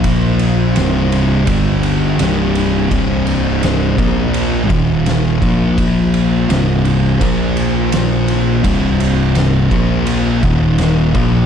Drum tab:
RD |xxxxxxxx|xxxxxxxx|xxxxxxxx|xxxxxxxx|
SD |--o---o-|--o---o-|--o---o-|--o---o-|
BD |o---o---|o--o-o-o|o---o---|o--o-o-o|